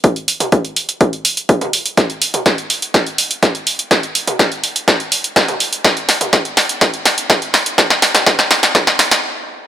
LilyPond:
\new DrumStaff \with { instrumentName = "Drums" } \drummode { \time 4/4 \tempo 4 = 124 <hh bd>16 hh16 hho16 <hh toml>16 <hh bd>16 hh16 hho16 hh16 <hh bd>16 hh16 hho16 hh16 <hh bd>16 <hh toml>16 hho16 hh16 | <hh bd sn>16 hh16 hho16 <hh toml>16 <hh bd sn>16 hh16 hho16 hh16 <hh bd sn>16 hh16 hho16 hh16 <hh bd sn>16 hh16 hho16 hh16 | <hh bd sn>16 hh16 hho16 <hh toml>16 <hh bd sn>16 hh16 hho16 hh16 <hh bd sn>16 hh16 hho16 hh16 <hh bd sn>16 <hh toml>16 hho16 hh16 | <hh bd sn>16 hh16 <hho sn>16 <hh toml>16 <hh bd sn>16 hh16 <hho sn>16 hh16 <hh bd sn>16 hh16 <hho sn>16 hh16 <hh bd sn>16 hh16 <hho sn>16 hh16 |
<hh bd sn>16 <hh sn>16 <hho sn>16 <hh sn toml>16 <hh bd sn>16 <hh sn>16 <hho sn>16 <hh sn>16 <hh bd sn>16 <hh sn>16 <hho sn>16 <hh sn>16 r4 | }